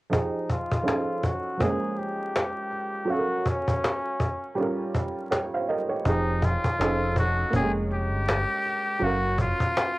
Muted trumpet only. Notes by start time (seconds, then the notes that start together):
0.15 D#4
0.52 F4
1.26 F#4
1.62 G#4
1.99 G4
3.11 F#4
3.49 C#4
6.07 D#4
6.45 F4
7.19 F#4
7.56 G#4
7.93 G4
9.03 F#4
9.41 F4